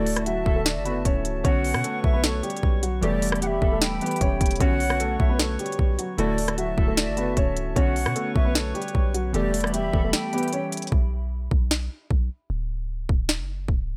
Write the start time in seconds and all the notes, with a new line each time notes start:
Already playing: D1 A3 F#4 A4 D5 E5 A5
0.07 closed hi-hat, open hi-hat
0.16 D3 A3 E4 F#4, cross-stick, closed hi-hat
0.26 F#3 F#4 E5, closed hi-hat
0.45 D1 D3 A3 E4 A4, kick
0.56 A3 A4
0.65 D5, snare, closed hi-hat
0.76 F#1
0.84 D3 A3 B3 E4 F#4 B4, closed hi-hat
1.05 D1 C#4 C#5, kick, closed hi-hat
1.25 C#1, closed hi-hat
1.44 B1 D3 B3 C#4 F#4 B4 C#5 F#5 C#6, kick, closed hi-hat
1.64 open hi-hat
1.73 B2 D3 B3 C#4 F#4, cross-stick
1.84 A3 A4, closed hi-hat
2.04 B1 E5, kick
2.13 B3 B4
2.24 A3 A4, snare, closed hi-hat
2.43 G3 G4, closed hi-hat
2.50 closed hi-hat
2.57 closed hi-hat
2.63 B1, kick
2.83 F#3 F#4, closed hi-hat
3.01 E1 E3 G3 A3 B3 G4 A4 D5 E5 B5, closed hi-hat
3.22 closed hi-hat, open hi-hat
3.29 E3 G3 B3, cross-stick, closed hi-hat
3.33 G4, closed hi-hat
3.42 G3 G4 F#5, closed hi-hat
3.47 E5
3.61 E1 E3 G3 B3 A4, kick
3.72 A3 A4
3.81 D1 G5, snare, closed hi-hat
4.01 E3 G3 B3 G4 B4, closed hi-hat
4.06 closed hi-hat
4.11 closed hi-hat
4.16 closed hi-hat
4.21 E1 C#4 C#5, kick, closed hi-hat
4.41 E1, kick, closed hi-hat
4.46 closed hi-hat
4.51 closed hi-hat
4.56 D3, closed hi-hat
4.60 B1 B3 C#4 F#4 B4 C#5 F#5 C#6, kick, closed hi-hat
4.80 open hi-hat
4.89 D3 B3 C#4 F#4, cross-stick
5.00 A3 A4, closed hi-hat
5.20 B1 E5, kick
5.29 B3 B4
5.39 A3 A4, snare, closed hi-hat
5.59 G3 G4, closed hi-hat
5.66 closed hi-hat
5.72 closed hi-hat
5.79 B1, kick
5.99 F#3 F#4, closed hi-hat
6.17 D1 D3 A3 E4 F#4 A4 D5 E5 A5, closed hi-hat
6.38 closed hi-hat, open hi-hat
6.48 D3 A3 E4 F#4, cross-stick, closed hi-hat
6.58 F#3 F#4 E5, closed hi-hat
6.77 D1 D3 A3 E4 A4, kick
6.87 A3 A4
6.97 D5, snare, closed hi-hat
7.07 F#1
7.16 D3 A3 B3 E4 F#4 B4, closed hi-hat
7.37 D1 C#4 C#5, kick, closed hi-hat
7.57 C#1, closed hi-hat
7.76 B1 D3 B3 C#4 F#4 B4 C#5 F#5 C#6, kick, closed hi-hat
7.96 open hi-hat
8.05 B2 D3 B3 C#4 F#4, cross-stick
8.16 A3 A4, closed hi-hat
8.35 B1 E5, kick
8.45 B3 B4
8.55 A3 A4, snare, closed hi-hat
8.75 G3 G4, closed hi-hat
8.82 closed hi-hat
8.88 closed hi-hat
8.95 B1, kick
9.14 F#3 F#4, closed hi-hat
9.33 E1 E3 G3 A3 B3 G4 A4 D5 E5 B5, closed hi-hat
9.54 closed hi-hat, open hi-hat
9.61 E3 G3 B3, cross-stick, closed hi-hat
9.65 G4, closed hi-hat
9.74 G3 G4 E5, closed hi-hat
9.93 E1 E3 G3 B3 A4, kick
10.04 A3 A4
10.13 G5, snare, closed hi-hat
10.33 E3 G3 B3 G4 B4, closed hi-hat
10.38 closed hi-hat
10.43 closed hi-hat
10.48 closed hi-hat
10.53 C#4 C#5, closed hi-hat
10.72 closed hi-hat
10.77 closed hi-hat
10.82 closed hi-hat
10.87 closed hi-hat
10.92 B1, kick
11.51 B1, kick
11.71 snare
12.11 B1, kick
12.50 D1
13.09 D1, kick
13.29 snare
13.39 F#1
13.68 D1, kick
13.88 C#1